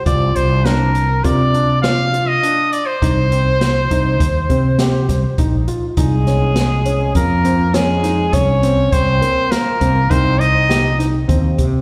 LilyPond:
<<
  \new Staff \with { instrumentName = "Trumpet" } { \time 5/4 \key c \minor \tempo 4 = 102 d''8 c''8 bes'4 d''4 f''8. ees''8. d''16 c''16~ | c''1 r4 | \key des \lydian aes'2 bes'4 aes'4 des''4 | c''4 bes'4 c''8 ees''4 r4. | }
  \new Staff \with { instrumentName = "Grand piano" } { \time 5/4 \key c \minor f'4 d'4 f'8 d'8 f'8 f'8 d'4 | ees'8 c'4 ees'4 c'8 g'4 ees'8 f'8 | \key des \lydian ees'8 des'4 des'4 c'8 des'8 ees'8 des'8 c'8~ | c'8 bes4 c'8 ees'4 g'8 ees'8 c'4 | }
  \new Staff \with { instrumentName = "Flugelhorn" } { \time 5/4 \key c \minor r1 r4 | r1 r4 | \key des \lydian aes2 bes4 aes4 des'4 | c'4 bes4 c'8 ees'4 r4. | }
  \new Staff \with { instrumentName = "Fretless electric bass" } { \clef bass \time 5/4 \key c \minor c,8 c,4. c2 r4 | c,4. c,8 ees,8 c4 c,16 r16 bes,,8 r8 | \key des \lydian c,2 f,2 c,4 | c,8 r4 c,8 c,2 ees,8 c8 | }
  \new DrumStaff \with { instrumentName = "Drums" } \drummode { \time 5/4 <hh bd>8 hh8 <hh sn>8 hh8 <hh bd>8 hh8 <hh sn>8 hh8 hh8 hh8 | <hh bd>8 hh8 <hh sn>8 <hh bd>8 <hh bd>8 <hh bd>8 <hh sn>8 <hh bd sn>8 <hh bd>8 hh8 | <hh bd>8 <hh sn>8 <hh sn>8 hh8 <hh bd>8 hh8 <hh sn>8 <hh sn>8 <hh bd>8 <hh sn>8 | <hh bd>8 hh8 <hh sn>8 <hh bd>8 <hh bd>8 hh8 <hh sn>8 <hh sn>8 <hh bd>8 <hh bd>8 | }
>>